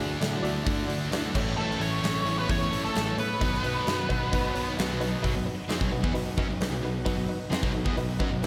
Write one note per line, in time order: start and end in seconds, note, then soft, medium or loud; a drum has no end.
0.00 0.16 D2 medium
0.00 0.63 D3 loud
0.00 0.65 A3 loud
0.00 0.65 D4 medium
0.00 0.16 E4 medium
0.00 1.33 E4 medium
0.00 0.16 F#4 medium
0.00 0.66 F#4 loud
0.00 1.33 F#4 medium
0.00 0.16 G#4 medium
0.00 1.33 D5 medium
0.20 0.39 A2 medium
0.20 0.39 E4 medium
0.20 0.39 F#4 medium
0.20 0.39 D5 medium
0.20 snare loud
0.20 open hi-hat medium
0.42 0.62 D2 medium
0.42 1.10 D3 medium
0.42 1.11 A3 medium
0.42 1.10 D4 medium
0.42 0.61 E4 loud
0.42 0.61 F#4 loud
0.42 0.61 D5 loud
0.42 open hi-hat medium
0.64 0.85 D2 loud
0.64 1.33 D3 medium
0.64 1.33 A3 medium
0.64 1.34 D4 medium
0.64 0.84 E4 medium
0.64 0.84 F#4 medium
0.64 1.34 F#4 medium
0.64 0.84 D5 medium
0.64 kick loud
0.64 open hi-hat medium
0.88 1.07 D2 medium
0.88 1.07 E4 medium
0.88 1.07 F#4 medium
0.88 1.07 D5 medium
0.88 open hi-hat medium
1.11 1.30 D2 medium
1.11 1.33 D3 medium
1.11 1.34 A3 medium
1.11 1.34 D4 medium
1.11 1.30 E4 medium
1.11 1.30 F#4 medium
1.11 1.30 D5 medium
1.11 snare loud
1.11 open hi-hat medium
1.33 1.53 A1 medium
1.33 2.24 A2 loud
1.33 2.24 E3 medium
1.33 2.25 A3 loud
1.33 2.25 C#4 medium
1.33 3.38 E4 medium
1.33 1.71 E4 loud
1.33 2.24 E4 medium
1.33 1.72 A4 medium
1.33 3.38 A4 medium
1.33 3.38 C#5 medium
1.33 1.72 C#5 loud
1.33 kick loud
1.33 crash medium
1.57 1.75 A1 medium
1.57 1.79 A3 medium
1.57 1.79 A4 medium
1.71 snare soft
1.80 1.98 A1 medium
1.80 2.34 C#4 medium
1.80 1.98 E4 medium
1.80 1.99 A4 medium
1.80 1.99 C#5 medium
1.80 2.38 C#5 loud
1.80 open hi-hat medium
2.02 2.21 A1 medium
2.02 2.70 A2 medium
2.02 2.71 E3 medium
2.02 2.71 A3 medium
2.02 2.21 E4 medium
2.02 2.21 A4 medium
2.02 2.22 C#5 medium
2.02 snare loud
2.02 open hi-hat medium
2.25 2.44 A1 medium
2.25 3.17 A2 medium
2.25 3.17 E3 medium
2.25 3.17 A3 medium
2.25 3.16 C#4 medium
2.25 3.16 E4 medium
2.25 2.44 E4 medium
2.25 2.44 A4 medium
2.25 2.45 C#5 loud
2.25 open hi-hat medium
2.38 2.48 B3 medium
2.38 2.49 B4 loud
2.49 2.67 E2 loud
2.49 2.81 C#4 medium
2.49 2.67 E4 medium
2.49 2.67 A4 medium
2.49 2.67 C#5 medium
2.49 2.82 C#5 loud
2.49 kick loud
2.49 open hi-hat medium
2.71 2.90 A1 medium
2.71 3.17 A2 medium
2.71 3.17 E3 medium
2.71 3.16 A3 medium
2.71 2.90 E4 medium
2.71 2.90 A4 medium
2.71 2.90 C#5 medium
2.71 open hi-hat medium
2.84 3.16 A3 medium
2.84 3.16 A4 medium
2.94 3.13 A1 medium
2.94 3.13 E4 medium
2.94 3.13 A4 medium
2.94 3.13 C#5 medium
2.94 snare loud
2.94 open hi-hat medium
3.17 3.36 A2 medium
3.17 4.74 B3 medium
3.17 3.36 E4 loud
3.17 3.36 A4 medium
3.17 4.74 B4 medium
3.17 3.36 C#5 loud
3.17 open hi-hat medium
3.40 3.59 B1 medium
3.40 4.30 B2 medium
3.40 4.30 D#3 medium
3.40 4.31 F#3 medium
3.40 4.31 B3 medium
3.40 5.21 D#4 medium
3.40 3.59 D#4 medium
3.40 4.32 D#4 loud
3.40 3.59 F#4 medium
3.40 5.21 F#4 medium
3.40 5.21 B4 medium
3.40 3.59 B4 loud
3.40 kick loud
3.40 open hi-hat medium
3.54 snare soft
3.64 3.82 B1 medium
3.64 3.82 D#4 medium
3.64 3.82 F#4 medium
3.64 3.82 B4 medium
3.64 open hi-hat medium
3.87 4.05 F#2 medium
3.87 4.05 D#4 medium
3.87 4.05 F#4 medium
3.87 4.05 B4 medium
3.87 snare loud
3.87 open hi-hat medium
4.09 4.28 B1 medium
4.09 4.77 B2 medium
4.09 4.77 F#3 medium
4.09 4.76 B3 medium
4.09 4.27 D#4 loud
4.09 4.27 F#4 loud
4.09 4.27 B4 loud
4.09 kick medium
4.09 open hi-hat medium
4.31 4.51 B1 medium
4.31 5.22 B2 medium
4.31 5.22 D#3 medium
4.31 5.23 F#3 medium
4.31 5.23 B3 medium
4.31 4.50 D#4 medium
4.31 5.23 D#4 medium
4.31 4.50 F#4 medium
4.31 4.50 B4 loud
4.31 kick loud
4.31 open hi-hat medium
4.54 4.74 B1 medium
4.54 4.73 D#4 medium
4.54 4.73 F#4 medium
4.54 4.73 C#5 medium
4.54 open hi-hat medium
4.77 5.14 B1 medium
4.77 5.22 B2 medium
4.77 5.23 F#3 medium
4.77 5.23 B3 medium
4.77 4.96 D#4 medium
4.77 4.96 F#4 medium
4.77 4.96 B4 medium
4.77 snare loud
4.77 open hi-hat medium
5.00 5.19 D#4 loud
5.00 5.18 F#4 loud
5.00 5.19 B4 loud
5.00 open hi-hat medium
5.23 5.35 B1 medium
5.23 5.34 B2 medium
5.23 5.34 F#3 medium
5.23 5.41 D#4 loud
5.23 8.47 D#4 medium
5.23 5.41 F#4 loud
5.23 8.47 F#4 medium
5.23 5.41 B4 loud
5.23 8.47 B4 medium
5.23 kick medium
5.23 open hi-hat medium
5.35 5.46 B1 medium
5.35 5.45 B2 medium
5.35 5.46 F#3 medium
5.45 5.64 D#4 medium
5.45 5.64 F#4 medium
5.45 5.64 B4 medium
5.45 muted distorted electric guitar stroke medium
5.45 muted picked electric bass stroke soft
5.69 5.80 F2 medium
5.69 5.80 F3 medium
5.69 5.80 C4 medium
5.69 5.87 D#4 medium
5.69 5.87 F#4 medium
5.69 5.87 G#4 medium
5.69 snare loud
5.69 open hi-hat medium
5.80 5.91 B1 medium
5.80 5.91 B2 medium
5.80 5.92 F#3 medium
5.80 kick loud
5.91 6.02 B1 medium
5.91 6.02 B2 medium
5.91 6.03 F#3 medium
5.91 6.10 D#4 medium
5.91 6.10 F#4 medium
5.91 6.10 B4 loud
6.03 6.14 E2 medium
6.03 6.14 E3 medium
6.03 6.14 B3 medium
6.03 kick loud
6.14 6.36 B1 medium
6.14 6.33 B2 medium
6.14 6.33 F#3 medium
6.14 6.32 D#4 loud
6.14 6.32 F#4 loud
6.14 6.33 B4 loud
6.14 open hi-hat medium
6.38 6.48 F#2 medium
6.38 6.48 F#3 medium
6.38 6.49 C#4 medium
6.38 6.56 D#4 medium
6.38 6.56 F#4 medium
6.38 6.56 B4 medium
6.38 kick loud
6.49 6.70 B1 medium
6.49 6.67 B2 medium
6.49 6.67 F#3 medium
6.60 6.79 D#4 medium
6.60 6.79 F#4 medium
6.60 6.79 B4 medium
6.60 snare loud
6.60 open hi-hat medium
6.71 6.82 B1 medium
6.71 6.82 B2 medium
6.71 6.82 F#3 medium
6.83 7.04 B1 medium
6.83 7.01 B2 medium
6.83 7.01 F#3 medium
6.83 7.02 D#4 medium
6.83 7.02 F#4 medium
6.83 7.02 B4 loud
7.05 7.17 B1 medium
7.05 7.16 B2 medium
7.05 7.16 F#3 medium
7.05 7.24 D#4 loud
7.05 7.24 F#4 loud
7.05 7.24 B4 loud
7.05 kick loud
7.05 open hi-hat medium
7.17 7.28 B1 medium
7.17 7.27 B2 medium
7.17 7.29 F#3 medium
7.29 7.47 D#4 medium
7.29 7.47 F#4 medium
7.29 7.47 B4 medium
7.29 muted distorted electric guitar stroke medium
7.51 7.62 F2 medium
7.51 7.62 F3 medium
7.51 7.62 C4 loud
7.51 7.70 D#4 medium
7.51 7.70 F#4 medium
7.51 7.70 B4 medium
7.51 snare loud
7.51 open hi-hat medium
7.62 7.73 B1 medium
7.62 7.73 B2 medium
7.62 7.73 F#3 loud
7.62 kick loud
7.74 7.85 B1 medium
7.74 7.85 B2 medium
7.74 7.86 F#3 medium
7.74 7.93 D#4 medium
7.74 7.93 F#4 medium
7.74 7.93 A4 medium
7.85 7.96 E2 medium
7.85 7.96 E3 medium
7.85 7.97 B3 loud
7.85 kick medium
7.97 8.18 B1 medium
7.97 8.15 B2 medium
7.97 8.15 F#3 medium
7.97 8.15 D#4 loud
7.97 8.15 F#4 medium
7.97 8.15 B4 loud
7.97 open hi-hat medium
8.19 8.31 F#2 loud
8.19 8.31 F#3 medium
8.19 8.31 C#4 medium
8.19 8.38 D#4 medium
8.19 8.38 F#4 medium
8.19 8.38 B4 medium
8.19 kick loud
8.31 8.47 B1 medium
8.31 8.47 B2 medium
8.31 8.47 F#3 medium
8.43 8.47 D#4 medium
8.43 8.47 F#4 medium
8.43 8.47 B4 medium
8.43 open hi-hat medium